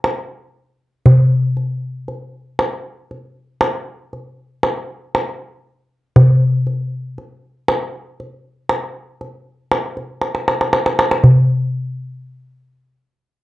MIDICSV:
0, 0, Header, 1, 2, 480
1, 0, Start_track
1, 0, Tempo, 1018676
1, 501, Time_signature, 10, 3, 24, 8
1, 6331, End_track
2, 0, Start_track
2, 0, Title_t, "Darbuka"
2, 20, Note_on_c, 9, 63, 56
2, 67, Note_off_c, 9, 63, 0
2, 498, Note_on_c, 9, 64, 82
2, 545, Note_off_c, 9, 64, 0
2, 739, Note_on_c, 9, 62, 22
2, 786, Note_off_c, 9, 62, 0
2, 981, Note_on_c, 9, 62, 24
2, 1028, Note_off_c, 9, 62, 0
2, 1221, Note_on_c, 9, 63, 59
2, 1268, Note_off_c, 9, 63, 0
2, 1465, Note_on_c, 9, 62, 23
2, 1512, Note_off_c, 9, 62, 0
2, 1700, Note_on_c, 9, 63, 67
2, 1747, Note_off_c, 9, 63, 0
2, 1946, Note_on_c, 9, 62, 24
2, 1993, Note_off_c, 9, 62, 0
2, 2183, Note_on_c, 9, 63, 64
2, 2230, Note_off_c, 9, 63, 0
2, 2426, Note_on_c, 9, 63, 61
2, 2473, Note_off_c, 9, 63, 0
2, 2903, Note_on_c, 9, 64, 93
2, 2950, Note_off_c, 9, 64, 0
2, 3142, Note_on_c, 9, 62, 25
2, 3189, Note_off_c, 9, 62, 0
2, 3384, Note_on_c, 9, 62, 26
2, 3431, Note_off_c, 9, 62, 0
2, 3621, Note_on_c, 9, 63, 69
2, 3668, Note_off_c, 9, 63, 0
2, 3863, Note_on_c, 9, 62, 24
2, 3911, Note_off_c, 9, 62, 0
2, 4097, Note_on_c, 9, 63, 67
2, 4144, Note_off_c, 9, 63, 0
2, 4340, Note_on_c, 9, 62, 26
2, 4387, Note_off_c, 9, 62, 0
2, 4578, Note_on_c, 9, 63, 63
2, 4625, Note_off_c, 9, 63, 0
2, 4698, Note_on_c, 9, 62, 25
2, 4745, Note_off_c, 9, 62, 0
2, 4813, Note_on_c, 9, 63, 46
2, 4861, Note_off_c, 9, 63, 0
2, 4876, Note_on_c, 9, 62, 52
2, 4923, Note_off_c, 9, 62, 0
2, 4938, Note_on_c, 9, 63, 65
2, 4985, Note_off_c, 9, 63, 0
2, 4999, Note_on_c, 9, 62, 66
2, 5047, Note_off_c, 9, 62, 0
2, 5056, Note_on_c, 9, 63, 68
2, 5103, Note_off_c, 9, 63, 0
2, 5118, Note_on_c, 9, 62, 72
2, 5165, Note_off_c, 9, 62, 0
2, 5178, Note_on_c, 9, 63, 76
2, 5225, Note_off_c, 9, 63, 0
2, 5237, Note_on_c, 9, 62, 80
2, 5284, Note_off_c, 9, 62, 0
2, 5295, Note_on_c, 9, 64, 74
2, 5342, Note_off_c, 9, 64, 0
2, 6331, End_track
0, 0, End_of_file